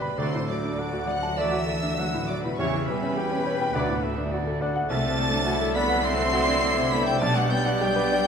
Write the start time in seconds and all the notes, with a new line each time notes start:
Already playing: G1 G2 D3 G3 B3 D4 G4 B4 D5
0.02 B2 B4 B5
0.17 D2 C3 D3 F#3 A3 F#4 A4 C5 D5 C6
0.34 A2
0.48 D3 F#3 D5 D6
0.65 D4
0.78 A4 F#5
0.93 F#4
1.07 F#3 D5 F#5 F#6
1.23 A5
1.37 D3 E3 F#3 A3 A4 D5 E5 E6
1.52 F#4
1.66 A4 D5
1.83 D4
1.98 F#3 F#5
2.14 A2
2.29 D3 F#3 D5 D6
2.43 A2 B2 B4 B5
2.57 E2 C#3 E3 G3 C#4 G4 C#5 E5 C#6
2.75 E3
2.88 B2 G3 B4 B5
3.03 C#4
3.17 G4 G5
3.32 C#4
3.45 C#5 G5
3.61 G5
3.74 D2 D3 F#3 A3 D4 F#4 D5 F#5
3.89 A2
4.03 A3 E5
4.18 D4
4.32 F#4 D5
4.47 A4
4.61 D5 F#5
4.76 F#5
4.90 C2 D3 F#3 A3 C4 D4 A4 D5 E5 A5 A6
5.05 C3
5.18 A3 D5
5.33 D4
5.47 E4 F#4 E5
5.61 A4
5.75 B3 D4 D5 F#5 B5 B6
5.89 F#5
6.03 C4 D5 E5 C6 C7
6.19 A4
6.33 E4 F#4
6.48 D4
6.63 A3
6.78 C3
6.91 A3 B3 B5 B6
7.06 C3 G3 G5 G6
7.20 B1 B2 G3 A3 B3 D4 G4 D5 A5 A6
7.35 B2 F#3 F#5 F#6
7.51 G3 B3 G5 G6
7.65 F#3 D4 F#5 F#6
7.79 G3 G4 G5 G6
7.96 B4
8.12 D5